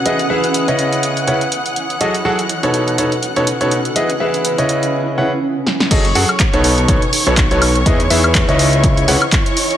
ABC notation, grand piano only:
X:1
M:4/4
L:1/16
Q:"Swing 16ths" 1/4=123
K:C#m
V:1 name="Grand piano"
[E,EGBd] z [E,EGBe]3 [C,EBcd]4- [C,EBcd] [C,EBcf] z4 z | [F,FGAd] z [F,FGAf] z2 [B,,DABc]3 [B,,DABc] z2 [B,,DABc] z [B,,DABc] z2 | [E,EGBd] z [E,EGBe]3 [C,EBcd]4- [C,EBcd] [C,EBcf] z4 z | [F,FGAd] z [F,FGAf] z2 [B,,DABc]3 [B,,DABc] z2 [B,,DABc] z [B,,DABc] z2 |
[E,EGBd] z [E,EGBe]3 [C,EBcd]4- [C,EBcd] [C,EBcf] z4 z |]